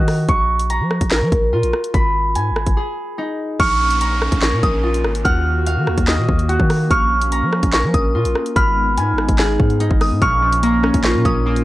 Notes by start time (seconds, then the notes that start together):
Already playing: D#3 F#4 D#5 F5 F#5
0.08 cross-stick, open hi-hat
0.29 A#1 C#6, kick, closed hi-hat
0.59 closed hi-hat
0.70 A#5, closed hi-hat
0.80 F3
0.91 cross-stick
1.01 A#1, kick, closed hi-hat
1.11 A#4, snare, clap
1.22 F3
1.32 A#1, kick, closed hi-hat
1.53 A#2 F4
1.63 A#1, closed hi-hat
1.73 cross-stick
1.84 closed hi-hat
1.94 G#1 B5, kick, closed hi-hat
2.35 G#2 G#5, closed hi-hat
2.51 G#1
2.56 cross-stick
2.67 G#1, kick, closed hi-hat
2.77 G#4
3.18 D#4
3.60 A#1 A#3 C#4 C#6 F6, kick, closed hi-hat, downlifter
3.91 closed hi-hat
4.01 A#5, closed hi-hat
4.22 cross-stick
4.32 A#1, kick, closed hi-hat
4.42 A#4 C#6, snare, clap
4.53 A#2
4.63 A#1 D#6, kick, closed hi-hat
4.84 F4
4.94 closed hi-hat
5.04 G#1, cross-stick
5.15 closed hi-hat
5.25 D#2 D#3 F#4 F#5 F6, kick, closed hi-hat
5.67 F5, closed hi-hat
5.77 D#3
5.87 D#2, cross-stick
5.98 D#2, kick, closed hi-hat
6.07 D#5, snare, clap
6.18 A#2
6.29 D#2, kick
6.39 closed hi-hat
6.49 F#4, closed hi-hat
6.60 D#3, kick
6.70 cross-stick, open hi-hat
6.91 A#1 C#4 C#6 F6, kick, closed hi-hat
7.22 closed hi-hat
7.32 A#5, closed hi-hat
7.42 F3
7.53 cross-stick
7.63 A#1, kick, closed hi-hat
7.73 A#4 C#6, snare, clap
7.84 F3
7.94 A#1 D#6, kick, closed hi-hat
8.15 A#2 F4
8.25 A#1, closed hi-hat
8.35 cross-stick
8.46 closed hi-hat
8.56 G#1 G#3 B3 D#4 B5 F6, kick, closed hi-hat
8.98 G#2 G#5, closed hi-hat
9.13 G#1
9.18 cross-stick
9.29 G#1, kick, closed hi-hat
9.38 G#4, snare, clap
9.60 G#2, kick
9.70 closed hi-hat
9.80 D#4, closed hi-hat
9.91 G#1, kick
10.01 D#6, cross-stick, open hi-hat
10.11 G#2
10.22 A#1 A#2 A#3 C#4 C#6 F6, kick, closed hi-hat
10.42 F3
10.53 closed hi-hat
10.63 A#3 A#5, closed hi-hat
10.83 C#4, cross-stick
10.94 A#1, kick, closed hi-hat
11.04 F4 A#4 C#6, snare, clap
11.15 A#2
11.25 A#1 C#4 D#6, kick, closed hi-hat
11.46 A#3 F4
11.56 closed hi-hat